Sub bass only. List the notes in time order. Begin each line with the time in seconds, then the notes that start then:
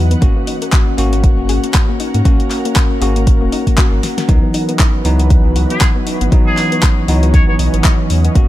Already playing: E2
0.22 G#1
0.98 G#1
1.38 F#1
1.49 G#1
2.14 G#2
3.02 G#1
3.42 D#1
3.92 G#1
4.29 C#2
5.05 C#2
5.45 B1
5.56 C#2
6.21 G#1
7.08 C#2
7.48 G#1
7.59 B1
7.74 G#1
8.10 E2
8.35 G#1